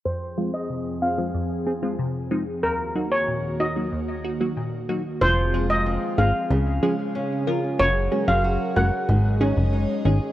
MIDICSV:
0, 0, Header, 1, 6, 480
1, 0, Start_track
1, 0, Tempo, 645161
1, 39, Time_signature, 4, 2, 24, 8
1, 7680, End_track
2, 0, Start_track
2, 0, Title_t, "Steel pan"
2, 0, Program_c, 0, 114
2, 39, Note_on_c, 0, 72, 97
2, 113, Note_off_c, 0, 72, 0
2, 399, Note_on_c, 0, 75, 81
2, 473, Note_off_c, 0, 75, 0
2, 759, Note_on_c, 0, 77, 70
2, 833, Note_off_c, 0, 77, 0
2, 1959, Note_on_c, 0, 70, 94
2, 2034, Note_off_c, 0, 70, 0
2, 2319, Note_on_c, 0, 73, 81
2, 2393, Note_off_c, 0, 73, 0
2, 2680, Note_on_c, 0, 75, 73
2, 2754, Note_off_c, 0, 75, 0
2, 3879, Note_on_c, 0, 72, 106
2, 3953, Note_off_c, 0, 72, 0
2, 4240, Note_on_c, 0, 75, 91
2, 4314, Note_off_c, 0, 75, 0
2, 4600, Note_on_c, 0, 77, 77
2, 4674, Note_off_c, 0, 77, 0
2, 5800, Note_on_c, 0, 73, 107
2, 5874, Note_off_c, 0, 73, 0
2, 6160, Note_on_c, 0, 77, 88
2, 6234, Note_off_c, 0, 77, 0
2, 6519, Note_on_c, 0, 78, 80
2, 6593, Note_off_c, 0, 78, 0
2, 7680, End_track
3, 0, Start_track
3, 0, Title_t, "Nylon-string guitar"
3, 0, Program_c, 1, 24
3, 3880, Note_on_c, 1, 53, 87
3, 3884, Note_on_c, 1, 65, 72
3, 4120, Note_on_c, 1, 56, 66
3, 4360, Note_on_c, 1, 60, 65
3, 4592, Note_off_c, 1, 65, 0
3, 4601, Note_on_c, 1, 65, 64
3, 4841, Note_on_c, 1, 49, 88
3, 4887, Note_off_c, 1, 53, 0
3, 4888, Note_off_c, 1, 60, 0
3, 4888, Note_off_c, 1, 65, 0
3, 5078, Note_off_c, 1, 56, 0
3, 5081, Note_on_c, 1, 56, 63
3, 5321, Note_on_c, 1, 61, 69
3, 5561, Note_on_c, 1, 65, 67
3, 5801, Note_on_c, 1, 54, 85
3, 5806, Note_on_c, 1, 70, 75
3, 5848, Note_off_c, 1, 49, 0
3, 5848, Note_off_c, 1, 65, 0
3, 6037, Note_off_c, 1, 61, 0
3, 6040, Note_on_c, 1, 61, 64
3, 6280, Note_on_c, 1, 66, 69
3, 6302, Note_off_c, 1, 56, 0
3, 6511, Note_off_c, 1, 70, 0
3, 6520, Note_on_c, 1, 70, 67
3, 6760, Note_on_c, 1, 44, 87
3, 6808, Note_off_c, 1, 54, 0
3, 6808, Note_off_c, 1, 61, 0
3, 6808, Note_off_c, 1, 66, 0
3, 6808, Note_off_c, 1, 70, 0
3, 7000, Note_on_c, 1, 61, 65
3, 7240, Note_on_c, 1, 63, 66
3, 7479, Note_on_c, 1, 68, 68
3, 7680, Note_off_c, 1, 44, 0
3, 7680, Note_off_c, 1, 61, 0
3, 7680, Note_off_c, 1, 63, 0
3, 7680, Note_off_c, 1, 68, 0
3, 7680, End_track
4, 0, Start_track
4, 0, Title_t, "Analog synth pad"
4, 0, Program_c, 2, 89
4, 40, Note_on_c, 2, 41, 80
4, 40, Note_on_c, 2, 53, 74
4, 40, Note_on_c, 2, 60, 74
4, 40, Note_on_c, 2, 68, 92
4, 1940, Note_off_c, 2, 68, 0
4, 1941, Note_off_c, 2, 41, 0
4, 1941, Note_off_c, 2, 53, 0
4, 1941, Note_off_c, 2, 60, 0
4, 1959, Note_on_c, 2, 39, 82
4, 1959, Note_on_c, 2, 51, 77
4, 1959, Note_on_c, 2, 58, 76
4, 1959, Note_on_c, 2, 66, 89
4, 3860, Note_off_c, 2, 39, 0
4, 3860, Note_off_c, 2, 51, 0
4, 3860, Note_off_c, 2, 58, 0
4, 3860, Note_off_c, 2, 66, 0
4, 3880, Note_on_c, 2, 60, 77
4, 3880, Note_on_c, 2, 68, 83
4, 3881, Note_on_c, 2, 53, 84
4, 3881, Note_on_c, 2, 77, 92
4, 4830, Note_off_c, 2, 53, 0
4, 4830, Note_off_c, 2, 60, 0
4, 4841, Note_on_c, 2, 49, 79
4, 4841, Note_on_c, 2, 61, 76
4, 5781, Note_off_c, 2, 77, 0
4, 5790, Note_off_c, 2, 49, 0
4, 5790, Note_off_c, 2, 61, 0
4, 5799, Note_on_c, 2, 66, 76
4, 5800, Note_on_c, 2, 54, 85
4, 5800, Note_on_c, 2, 70, 89
4, 6750, Note_off_c, 2, 54, 0
4, 6750, Note_off_c, 2, 66, 0
4, 6750, Note_off_c, 2, 70, 0
4, 6760, Note_on_c, 2, 56, 85
4, 6760, Note_on_c, 2, 73, 77
4, 6760, Note_on_c, 2, 75, 92
4, 7680, Note_off_c, 2, 56, 0
4, 7680, Note_off_c, 2, 68, 0
4, 7680, Note_off_c, 2, 73, 0
4, 7680, Note_off_c, 2, 75, 0
4, 7680, End_track
5, 0, Start_track
5, 0, Title_t, "Synth stab"
5, 0, Program_c, 3, 62
5, 38, Note_on_c, 3, 41, 72
5, 279, Note_on_c, 3, 53, 74
5, 279, Note_on_c, 3, 56, 67
5, 279, Note_on_c, 3, 60, 67
5, 279, Note_on_c, 3, 65, 84
5, 375, Note_off_c, 3, 53, 0
5, 375, Note_off_c, 3, 56, 0
5, 375, Note_off_c, 3, 60, 0
5, 375, Note_off_c, 3, 65, 0
5, 396, Note_off_c, 3, 41, 0
5, 519, Note_on_c, 3, 48, 75
5, 759, Note_on_c, 3, 60, 75
5, 760, Note_on_c, 3, 65, 81
5, 807, Note_off_c, 3, 60, 0
5, 808, Note_off_c, 3, 65, 0
5, 876, Note_off_c, 3, 48, 0
5, 879, Note_on_c, 3, 53, 65
5, 879, Note_on_c, 3, 56, 63
5, 879, Note_on_c, 3, 60, 64
5, 880, Note_on_c, 3, 65, 74
5, 975, Note_off_c, 3, 53, 0
5, 975, Note_off_c, 3, 56, 0
5, 975, Note_off_c, 3, 60, 0
5, 975, Note_off_c, 3, 65, 0
5, 999, Note_on_c, 3, 41, 89
5, 1239, Note_on_c, 3, 60, 92
5, 1239, Note_on_c, 3, 68, 96
5, 1287, Note_off_c, 3, 60, 0
5, 1287, Note_off_c, 3, 68, 0
5, 1356, Note_off_c, 3, 41, 0
5, 1359, Note_on_c, 3, 53, 81
5, 1359, Note_on_c, 3, 56, 76
5, 1359, Note_on_c, 3, 60, 73
5, 1359, Note_on_c, 3, 65, 91
5, 1455, Note_off_c, 3, 53, 0
5, 1455, Note_off_c, 3, 56, 0
5, 1455, Note_off_c, 3, 60, 0
5, 1455, Note_off_c, 3, 65, 0
5, 1479, Note_on_c, 3, 48, 93
5, 1719, Note_on_c, 3, 53, 90
5, 1719, Note_on_c, 3, 56, 80
5, 1719, Note_on_c, 3, 60, 82
5, 1720, Note_on_c, 3, 63, 99
5, 1815, Note_off_c, 3, 53, 0
5, 1815, Note_off_c, 3, 56, 0
5, 1815, Note_off_c, 3, 60, 0
5, 1815, Note_off_c, 3, 63, 0
5, 1836, Note_off_c, 3, 48, 0
5, 1959, Note_on_c, 3, 39, 70
5, 2199, Note_on_c, 3, 54, 74
5, 2199, Note_on_c, 3, 58, 65
5, 2199, Note_on_c, 3, 63, 65
5, 2199, Note_on_c, 3, 66, 83
5, 2295, Note_off_c, 3, 54, 0
5, 2295, Note_off_c, 3, 58, 0
5, 2295, Note_off_c, 3, 63, 0
5, 2295, Note_off_c, 3, 66, 0
5, 2316, Note_off_c, 3, 39, 0
5, 2439, Note_on_c, 3, 46, 72
5, 2679, Note_on_c, 3, 63, 77
5, 2680, Note_on_c, 3, 66, 82
5, 2727, Note_off_c, 3, 63, 0
5, 2728, Note_off_c, 3, 66, 0
5, 2796, Note_off_c, 3, 46, 0
5, 2799, Note_on_c, 3, 58, 62
5, 2800, Note_on_c, 3, 54, 70
5, 2800, Note_on_c, 3, 63, 64
5, 2800, Note_on_c, 3, 66, 76
5, 2895, Note_off_c, 3, 58, 0
5, 2896, Note_off_c, 3, 54, 0
5, 2896, Note_off_c, 3, 63, 0
5, 2896, Note_off_c, 3, 66, 0
5, 2919, Note_on_c, 3, 39, 86
5, 3159, Note_on_c, 3, 63, 86
5, 3159, Note_on_c, 3, 66, 98
5, 3207, Note_off_c, 3, 63, 0
5, 3207, Note_off_c, 3, 66, 0
5, 3276, Note_off_c, 3, 39, 0
5, 3279, Note_on_c, 3, 54, 82
5, 3280, Note_on_c, 3, 58, 76
5, 3280, Note_on_c, 3, 63, 75
5, 3280, Note_on_c, 3, 66, 92
5, 3375, Note_off_c, 3, 54, 0
5, 3375, Note_off_c, 3, 58, 0
5, 3375, Note_off_c, 3, 63, 0
5, 3375, Note_off_c, 3, 66, 0
5, 3400, Note_on_c, 3, 46, 89
5, 3640, Note_on_c, 3, 54, 83
5, 3640, Note_on_c, 3, 58, 78
5, 3640, Note_on_c, 3, 63, 81
5, 3640, Note_on_c, 3, 66, 94
5, 3735, Note_off_c, 3, 54, 0
5, 3736, Note_off_c, 3, 58, 0
5, 3736, Note_off_c, 3, 63, 0
5, 3736, Note_off_c, 3, 66, 0
5, 3757, Note_off_c, 3, 46, 0
5, 4120, Note_on_c, 3, 53, 76
5, 4120, Note_on_c, 3, 56, 68
5, 4120, Note_on_c, 3, 60, 69
5, 4120, Note_on_c, 3, 65, 70
5, 4120, Note_on_c, 3, 68, 83
5, 4215, Note_off_c, 3, 53, 0
5, 4216, Note_off_c, 3, 56, 0
5, 4216, Note_off_c, 3, 60, 0
5, 4216, Note_off_c, 3, 65, 0
5, 4216, Note_off_c, 3, 68, 0
5, 4600, Note_on_c, 3, 53, 75
5, 4600, Note_on_c, 3, 56, 71
5, 4601, Note_on_c, 3, 60, 74
5, 4601, Note_on_c, 3, 65, 71
5, 4601, Note_on_c, 3, 68, 87
5, 4696, Note_off_c, 3, 53, 0
5, 4696, Note_off_c, 3, 56, 0
5, 4696, Note_off_c, 3, 60, 0
5, 4696, Note_off_c, 3, 65, 0
5, 4696, Note_off_c, 3, 68, 0
5, 5080, Note_on_c, 3, 53, 93
5, 5080, Note_on_c, 3, 56, 86
5, 5080, Note_on_c, 3, 61, 82
5, 5081, Note_on_c, 3, 65, 85
5, 5081, Note_on_c, 3, 68, 100
5, 5176, Note_off_c, 3, 53, 0
5, 5176, Note_off_c, 3, 56, 0
5, 5176, Note_off_c, 3, 61, 0
5, 5176, Note_off_c, 3, 65, 0
5, 5176, Note_off_c, 3, 68, 0
5, 5560, Note_on_c, 3, 53, 90
5, 5560, Note_on_c, 3, 56, 84
5, 5560, Note_on_c, 3, 61, 85
5, 5560, Note_on_c, 3, 65, 84
5, 5560, Note_on_c, 3, 70, 101
5, 5655, Note_off_c, 3, 61, 0
5, 5656, Note_off_c, 3, 53, 0
5, 5656, Note_off_c, 3, 56, 0
5, 5656, Note_off_c, 3, 65, 0
5, 5656, Note_off_c, 3, 70, 0
5, 6039, Note_on_c, 3, 56, 76
5, 6039, Note_on_c, 3, 58, 70
5, 6039, Note_on_c, 3, 61, 69
5, 6039, Note_on_c, 3, 66, 68
5, 6039, Note_on_c, 3, 68, 81
5, 6135, Note_off_c, 3, 56, 0
5, 6135, Note_off_c, 3, 58, 0
5, 6135, Note_off_c, 3, 61, 0
5, 6135, Note_off_c, 3, 66, 0
5, 6135, Note_off_c, 3, 68, 0
5, 6519, Note_on_c, 3, 56, 79
5, 6519, Note_on_c, 3, 58, 71
5, 6519, Note_on_c, 3, 61, 72
5, 6519, Note_on_c, 3, 66, 72
5, 6519, Note_on_c, 3, 70, 85
5, 6615, Note_off_c, 3, 56, 0
5, 6615, Note_off_c, 3, 58, 0
5, 6615, Note_off_c, 3, 61, 0
5, 6615, Note_off_c, 3, 66, 0
5, 6615, Note_off_c, 3, 70, 0
5, 6999, Note_on_c, 3, 51, 94
5, 6999, Note_on_c, 3, 56, 86
5, 6999, Note_on_c, 3, 61, 85
5, 6999, Note_on_c, 3, 63, 86
5, 6999, Note_on_c, 3, 68, 101
5, 7095, Note_off_c, 3, 51, 0
5, 7095, Note_off_c, 3, 56, 0
5, 7095, Note_off_c, 3, 61, 0
5, 7095, Note_off_c, 3, 63, 0
5, 7095, Note_off_c, 3, 68, 0
5, 7480, Note_on_c, 3, 51, 89
5, 7480, Note_on_c, 3, 56, 86
5, 7480, Note_on_c, 3, 61, 84
5, 7480, Note_on_c, 3, 63, 80
5, 7480, Note_on_c, 3, 68, 96
5, 7575, Note_off_c, 3, 51, 0
5, 7575, Note_off_c, 3, 56, 0
5, 7576, Note_off_c, 3, 61, 0
5, 7576, Note_off_c, 3, 63, 0
5, 7576, Note_off_c, 3, 68, 0
5, 7680, End_track
6, 0, Start_track
6, 0, Title_t, "Analog synth bass"
6, 0, Program_c, 4, 38
6, 3880, Note_on_c, 4, 29, 113
6, 4450, Note_off_c, 4, 29, 0
6, 4599, Note_on_c, 4, 32, 92
6, 4710, Note_off_c, 4, 32, 0
6, 4839, Note_on_c, 4, 37, 109
6, 5060, Note_off_c, 4, 37, 0
6, 5799, Note_on_c, 4, 30, 110
6, 6019, Note_off_c, 4, 30, 0
6, 6159, Note_on_c, 4, 30, 88
6, 6380, Note_off_c, 4, 30, 0
6, 6519, Note_on_c, 4, 30, 87
6, 6629, Note_off_c, 4, 30, 0
6, 6760, Note_on_c, 4, 32, 108
6, 7090, Note_off_c, 4, 32, 0
6, 7120, Note_on_c, 4, 30, 95
6, 7340, Note_off_c, 4, 30, 0
6, 7480, Note_on_c, 4, 32, 100
6, 7590, Note_off_c, 4, 32, 0
6, 7680, End_track
0, 0, End_of_file